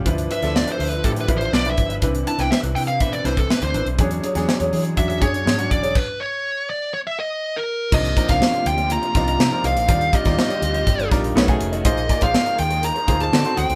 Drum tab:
CC |----------------|----------------|----------------|x---------------|
HH |xxxx-xoxxxxx-xxx|xxxx-xoxxxxx-xxx|xxxx-xoxxxxx-xxx|----------------|
SD |---oo-------o---|---oo-----o-o---|---oo-------o---|----------------|
BD |o-------o-o---o-|o-------o--o----|o-------o-o---o-|o---------------|

CC |x---------------|----------------|----------------|
HH |-xxx-xxxxxxx--xx|xxxx-xxxxxxx-xxx|xxxx-xxxxxxx-xxx|
SD |---oo-----o-o---|---oo-----o-o---|----o-------o---|
BD |o-oo------o-----|o-oo----o-o--o--|o-oo------o-----|